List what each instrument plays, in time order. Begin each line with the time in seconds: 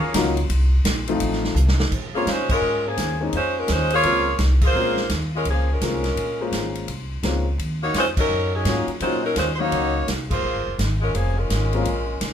Already playing: trombone section C#3 F3 A#3, trumpet section G#4 C#5 F5 A#5
0.02 muted upright bass stroke
0.14 upright bass C#2, grand piano F#3 A#3 C#4 D#4 F4, snare, hi-hat pedal, ride
0.37 ride
0.50 upright bass C2, ride
0.84 upright bass A#1, snare, hi-hat pedal, ride
1.07 grand piano F3 A3 C4 D#4 F4, ride
1.20 upright bass A1, ride
1.33 snare
1.44 snare
1.55 upright bass C2, hi-hat pedal
1.68 snare
1.80 snare
1.91 upright bass A#1, kick, crash
2.13 grand piano G#3 A#3 C4 C#4 F4, saxophone section A#3 F4 G#4 C#5, muted upright bass stroke
2.26 upright bass A#2, saxophone section G#3 C#4 F4 C5, snare, hi-hat pedal, ride
2.49 saxophone section G#3 C#4 F4 A#4, kick, crash
2.61 upright bass G#2
2.87 saxophone section F3 A#3 C#4 G#4
2.97 upright bass D#2, snare, hi-hat pedal, ride
3.21 grand piano G#3 A#3 C4 C#4 D#4
3.33 upright bass F2, saxophone section G#3 C#4 F4 C5, ride
3.58 saxophone section G#3 C#4 F4 A#4
3.68 upright bass D#2, saxophone section G#3 C#4 F4 C5, snare, hi-hat pedal, ride
3.90 saxophone section A#3 G#4 C#5, ride
3.94 saxophone section F4
4.03 upright bass C#2, grand piano G#3 A#3 C4 C#4 F4, ride
4.38 upright bass C2, snare, hi-hat pedal, ride
4.61 saxophone section A#3 F4 G#4 C5, kick, crash
4.74 upright bass A#1, grand piano G#3 A#3 C4 C#4 F4
4.97 snare
5.09 upright bass D#2, snare, hi-hat pedal, ride
5.35 saxophone section G#3 C#4 F4 A#4
5.45 upright bass C#2, saxophone section C#4 G#4, ride
5.49 saxophone section F3 A#3
5.72 saxophone section G#3 C#4 F4 A#4
5.81 upright bass C2, grand piano G#3 A#3 C4 C#4 F4, snare, hi-hat pedal, ride
6.04 snare, ride
6.16 upright bass A#1, ride
6.40 grand piano G#3 A#3 C#4 F4 C5
6.52 upright bass G#1, snare, hi-hat pedal, ride
6.75 ride
6.88 upright bass C2, ride
7.23 upright bass C#2, grand piano G#3 A#3 C4 C#4 F4, snare, hi-hat pedal, ride
7.58 upright bass D#2, ride
7.83 saxophone section A#3 D#4 F#4 C#5
7.94 upright bass F2, saxophone section G#3 C#4 F4 C5, snare, hi-hat pedal, ride
8.17 saxophone section F#3 C#4 D#4 A#4, kick, crash
8.29 upright bass F#2
8.54 saxophone section F#3 C#4 D#4 G#4
8.65 upright bass G#2, grand piano F#3 A#3 C#4 D#4 F4, snare, hi-hat pedal, ride
8.87 muted upright bass stroke, ride
9.00 upright bass A#2, grand piano F#3 A#3 C#4 D#4 F4, saxophone section G#3 C#4 F4 C5, ride
9.24 saxophone section F#3 C#4 D#4 A#4
9.36 upright bass D#2, saxophone section G#3 C#4 F4 C5, snare, hi-hat pedal, ride
9.53 saxophone section C5
9.59 grand piano F#3 A#3 C#4 D#4 F5, saxophone section A#3 D#4 F#4 C#5
9.72 upright bass C#2, ride
10.07 upright bass C2, snare, hi-hat pedal, ride
10.30 saxophone section A#3 F4 G#4 C5, kick, crash
10.43 upright bass A#1
10.55 upright bass G#1
10.67 upright bass F1
10.79 upright bass G#1, snare, hi-hat pedal, ride
11.01 saxophone section G#3 C#4 F4 A#4
11.14 upright bass F1, saxophone section F3 A#3 C#4 G#4, ride
11.37 saxophone section G#3 C#4 F4 A#4
11.50 upright bass G#1, snare, hi-hat pedal, ride
11.73 grand piano G#3 A#3 C4 C#4 F4, ride
11.85 upright bass A#1, ride
12.21 upright bass C2, snare, hi-hat pedal, ride